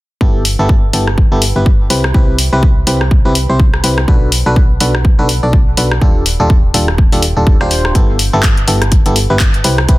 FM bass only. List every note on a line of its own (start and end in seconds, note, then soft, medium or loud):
0.21 0.56 G1 medium
0.59 0.91 G1 medium
0.93 1.29 G1 loud
1.32 1.53 G1 medium
1.56 1.88 G1 medium
1.90 2.12 C2 loud
2.14 2.50 C2 medium
2.53 2.85 C2 medium
2.87 3.22 C2 loud
3.25 3.47 C2 medium
3.49 3.82 C2 medium
3.84 4.06 C2 medium
4.08 4.43 B1 medium
4.46 4.78 B1 medium
4.81 5.16 B1 medium
5.19 5.40 B1 loud
5.43 5.75 B1 medium
5.77 6.00 B1 loud
6.02 6.37 D#1 medium
6.40 6.72 D#1 medium
6.74 7.10 D#1 loud
7.12 7.34 D#1 loud
7.37 7.58 D#1 medium
7.61 7.93 D#1 medium
7.95 8.31 G1 medium
8.33 8.66 G1 medium
8.68 9.03 G1 medium
9.06 9.27 G1 loud
9.30 9.62 G1 medium
9.64 9.87 C2 loud
9.89 9.98 C2 medium